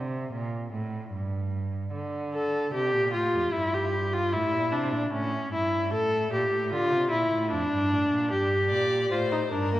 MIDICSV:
0, 0, Header, 1, 4, 480
1, 0, Start_track
1, 0, Key_signature, -2, "minor"
1, 0, Tempo, 798935
1, 1167, Time_signature, 4, 2, 24, 8
1, 5887, End_track
2, 0, Start_track
2, 0, Title_t, "Violin"
2, 0, Program_c, 0, 40
2, 5226, Note_on_c, 0, 74, 77
2, 5455, Note_off_c, 0, 74, 0
2, 5477, Note_on_c, 0, 72, 80
2, 5712, Note_off_c, 0, 72, 0
2, 5715, Note_on_c, 0, 70, 76
2, 5887, Note_off_c, 0, 70, 0
2, 5887, End_track
3, 0, Start_track
3, 0, Title_t, "Viola"
3, 0, Program_c, 1, 41
3, 1406, Note_on_c, 1, 69, 66
3, 1629, Note_off_c, 1, 69, 0
3, 1644, Note_on_c, 1, 67, 81
3, 1878, Note_off_c, 1, 67, 0
3, 1882, Note_on_c, 1, 65, 68
3, 2119, Note_on_c, 1, 64, 74
3, 2128, Note_off_c, 1, 65, 0
3, 2246, Note_on_c, 1, 67, 68
3, 2255, Note_off_c, 1, 64, 0
3, 2481, Note_on_c, 1, 65, 77
3, 2490, Note_off_c, 1, 67, 0
3, 2596, Note_on_c, 1, 64, 83
3, 2605, Note_off_c, 1, 65, 0
3, 2833, Note_on_c, 1, 62, 71
3, 2842, Note_off_c, 1, 64, 0
3, 3077, Note_off_c, 1, 62, 0
3, 3081, Note_on_c, 1, 61, 78
3, 3316, Note_off_c, 1, 61, 0
3, 3325, Note_on_c, 1, 64, 79
3, 3558, Note_off_c, 1, 64, 0
3, 3565, Note_on_c, 1, 69, 84
3, 3797, Note_off_c, 1, 69, 0
3, 3801, Note_on_c, 1, 67, 76
3, 4034, Note_off_c, 1, 67, 0
3, 4041, Note_on_c, 1, 65, 83
3, 4268, Note_off_c, 1, 65, 0
3, 4272, Note_on_c, 1, 64, 73
3, 4507, Note_off_c, 1, 64, 0
3, 4513, Note_on_c, 1, 62, 87
3, 4983, Note_off_c, 1, 62, 0
3, 4996, Note_on_c, 1, 67, 72
3, 5468, Note_off_c, 1, 67, 0
3, 5473, Note_on_c, 1, 65, 66
3, 5521, Note_off_c, 1, 65, 0
3, 5595, Note_on_c, 1, 63, 68
3, 5643, Note_off_c, 1, 63, 0
3, 5715, Note_on_c, 1, 62, 63
3, 5836, Note_off_c, 1, 62, 0
3, 5843, Note_on_c, 1, 58, 62
3, 5887, Note_off_c, 1, 58, 0
3, 5887, End_track
4, 0, Start_track
4, 0, Title_t, "Cello"
4, 0, Program_c, 2, 42
4, 0, Note_on_c, 2, 48, 65
4, 193, Note_off_c, 2, 48, 0
4, 197, Note_on_c, 2, 46, 71
4, 435, Note_off_c, 2, 46, 0
4, 438, Note_on_c, 2, 45, 65
4, 675, Note_off_c, 2, 45, 0
4, 678, Note_on_c, 2, 43, 63
4, 1154, Note_off_c, 2, 43, 0
4, 1162, Note_on_c, 2, 50, 60
4, 1633, Note_off_c, 2, 50, 0
4, 1643, Note_on_c, 2, 48, 60
4, 1763, Note_on_c, 2, 46, 56
4, 1772, Note_off_c, 2, 48, 0
4, 1884, Note_on_c, 2, 45, 62
4, 1893, Note_off_c, 2, 46, 0
4, 2005, Note_on_c, 2, 41, 55
4, 2014, Note_off_c, 2, 45, 0
4, 2120, Note_off_c, 2, 41, 0
4, 2124, Note_on_c, 2, 43, 61
4, 2599, Note_on_c, 2, 45, 56
4, 2608, Note_off_c, 2, 43, 0
4, 2716, Note_on_c, 2, 46, 60
4, 2725, Note_off_c, 2, 45, 0
4, 2840, Note_on_c, 2, 48, 61
4, 2849, Note_off_c, 2, 46, 0
4, 2954, Note_on_c, 2, 46, 57
4, 2963, Note_off_c, 2, 48, 0
4, 3072, Note_off_c, 2, 46, 0
4, 3075, Note_on_c, 2, 45, 58
4, 3311, Note_off_c, 2, 45, 0
4, 3315, Note_on_c, 2, 43, 55
4, 3552, Note_on_c, 2, 45, 64
4, 3561, Note_off_c, 2, 43, 0
4, 3789, Note_off_c, 2, 45, 0
4, 3793, Note_on_c, 2, 46, 61
4, 3909, Note_off_c, 2, 46, 0
4, 3913, Note_on_c, 2, 45, 61
4, 4036, Note_on_c, 2, 50, 62
4, 4045, Note_off_c, 2, 45, 0
4, 4154, Note_on_c, 2, 48, 58
4, 4163, Note_off_c, 2, 50, 0
4, 4274, Note_off_c, 2, 48, 0
4, 4279, Note_on_c, 2, 46, 56
4, 4394, Note_off_c, 2, 46, 0
4, 4397, Note_on_c, 2, 45, 64
4, 4516, Note_on_c, 2, 41, 61
4, 4525, Note_off_c, 2, 45, 0
4, 4631, Note_off_c, 2, 41, 0
4, 4634, Note_on_c, 2, 43, 65
4, 4754, Note_on_c, 2, 45, 60
4, 4763, Note_off_c, 2, 43, 0
4, 4871, Note_off_c, 2, 45, 0
4, 4875, Note_on_c, 2, 46, 58
4, 4995, Note_on_c, 2, 43, 63
4, 5004, Note_off_c, 2, 46, 0
4, 5237, Note_on_c, 2, 46, 60
4, 5246, Note_off_c, 2, 43, 0
4, 5474, Note_off_c, 2, 46, 0
4, 5478, Note_on_c, 2, 45, 67
4, 5715, Note_off_c, 2, 45, 0
4, 5721, Note_on_c, 2, 43, 65
4, 5887, Note_off_c, 2, 43, 0
4, 5887, End_track
0, 0, End_of_file